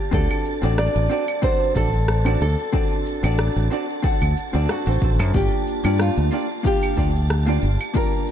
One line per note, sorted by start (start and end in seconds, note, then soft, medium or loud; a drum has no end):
0.00 0.13 G4 medium
0.00 8.31 A5 medium
0.11 0.26 D2 loud
0.11 0.58 C4 medium
0.11 0.58 D4 medium
0.11 0.59 F#4 medium
0.11 0.59 A4 medium
0.11 0.74 A4 loud
0.11 0.59 D5 loud
0.11 kick loud
0.11 shaker soft
0.31 claves medium
0.46 shaker medium
0.62 0.87 A1 medium
0.62 1.06 C4 loud
0.62 1.07 D4 medium
0.62 1.07 F#4 medium
0.62 1.07 A4 medium
0.62 1.08 D5 loud
0.62 shaker soft
0.78 1.40 D5 loud
0.78 cross-stick loud
0.78 shaker soft
0.96 1.07 A1 medium
1.09 1.23 C4 loud
1.09 1.23 D4 medium
1.09 1.24 F#4 medium
1.09 1.24 A4 medium
1.09 1.24 D5 loud
1.09 shaker medium
1.28 claves medium
1.28 shaker soft
1.42 1.72 C4 medium
1.42 1.72 D4 medium
1.42 1.72 F#4 medium
1.42 1.73 A4 medium
1.42 1.76 C5 loud
1.42 1.73 F#5 loud
1.42 kick loud
1.42 shaker soft
1.74 2.35 A1 medium
1.74 1.88 C4 medium
1.74 1.88 D4 medium
1.74 1.89 F#4 medium
1.74 1.89 A4 medium
1.74 2.41 A4 loud
1.74 1.89 D5 medium
1.74 kick medium
1.74 shaker medium
1.94 shaker soft
2.08 cross-stick medium
2.08 shaker soft
2.25 2.43 C4 medium
2.25 2.44 D4 medium
2.25 2.44 F#4 medium
2.25 2.44 A4 medium
2.25 2.45 D5 loud
2.25 claves medium
2.41 2.54 D2 medium
2.41 3.68 A4 medium
2.41 shaker medium
2.59 shaker soft
2.73 3.19 C4 medium
2.73 3.19 D4 medium
2.73 3.20 F#4 medium
2.73 3.20 A4 medium
2.73 3.20 D5 medium
2.73 kick loud
2.73 shaker soft
2.92 shaker soft
3.06 shaker medium
3.23 3.48 A1 medium
3.23 3.67 C4 medium
3.23 3.68 D4 medium
3.23 3.68 F#4 medium
3.23 3.68 A4 medium
3.23 3.69 D5 loud
3.23 claves medium
3.23 shaker soft
3.39 cross-stick loud
3.39 shaker soft
3.56 3.68 A1 medium
3.70 3.84 C4 medium
3.70 3.84 D4 medium
3.70 3.84 F#4 medium
3.70 3.85 A4 medium
3.70 3.85 D5 loud
3.70 shaker medium
3.90 shaker soft
4.02 4.32 C4 medium
4.02 4.33 D4 medium
4.02 4.33 F#4 medium
4.02 4.33 A4 medium
4.02 4.34 F#5 loud
4.02 kick loud
4.02 shaker soft
4.22 4.33 D2 medium
4.22 claves medium
4.37 shaker medium
4.53 4.66 D2 loud
4.53 4.82 C4 medium
4.53 4.82 D4 medium
4.53 4.83 F#4 medium
4.53 4.83 A4 medium
4.53 4.83 D5 loud
4.53 shaker soft
4.69 5.36 F#4 medium
4.69 cross-stick medium
4.69 shaker soft
4.86 4.98 A1 medium
4.86 4.98 C4 medium
4.86 4.98 D4 medium
4.86 4.98 F#4 medium
4.86 4.99 A4 medium
4.86 4.99 C5 medium
5.01 5.20 A1 medium
5.01 5.30 C4 medium
5.01 5.31 D4 medium
5.01 5.31 F#4 medium
5.01 5.31 A4 medium
5.01 5.32 C5 medium
5.01 kick loud
5.01 shaker medium
5.20 5.31 F#2 medium
5.20 claves medium
5.20 shaker soft
5.33 5.48 G1 loud
5.33 5.80 A#3 medium
5.33 5.80 D4 medium
5.33 5.81 F4 medium
5.33 5.81 G4 medium
5.33 6.01 G4 medium
5.33 5.81 D5 medium
5.33 kick loud
5.33 shaker soft
5.67 shaker medium
5.84 6.09 G2 medium
5.84 6.28 A#3 medium
5.84 6.28 D4 medium
5.84 6.29 F4 medium
5.84 6.29 G4 medium
5.84 6.29 D5 loud
5.84 claves medium
5.84 shaker soft
6.00 6.62 F4 medium
6.00 cross-stick medium
6.00 shaker soft
6.17 6.29 D2 medium
6.31 6.45 A#3 loud
6.31 6.45 D4 medium
6.31 6.45 F4 medium
6.31 6.46 G4 medium
6.31 6.46 D5 loud
6.31 shaker medium
6.50 shaker soft
6.63 6.93 A#3 medium
6.63 6.93 D4 medium
6.63 6.94 F4 medium
6.63 6.94 G4 medium
6.63 7.96 G4 loud
6.63 6.94 F5 loud
6.63 kick loud
6.63 shaker soft
6.83 claves medium
6.96 7.57 D2 medium
6.96 7.10 A#3 medium
6.96 7.10 D4 medium
6.96 7.10 F4 medium
6.96 7.11 G4 medium
6.96 7.11 D5 medium
6.96 kick medium
6.96 shaker medium
7.16 shaker soft
7.30 cross-stick medium
7.30 shaker soft
7.46 7.65 A#3 medium
7.46 7.65 D4 medium
7.46 7.66 F4 medium
7.46 7.66 G4 medium
7.46 7.66 D5 loud
7.63 7.76 G1 medium
7.63 shaker medium
7.81 claves medium
7.81 shaker soft
7.94 8.31 A#3 medium
7.94 8.31 D4 medium
7.94 8.31 F4 medium
7.94 8.31 G4 medium
7.94 8.31 A#4 loud
7.94 8.31 D5 medium
7.94 kick loud
7.94 shaker soft
8.28 shaker medium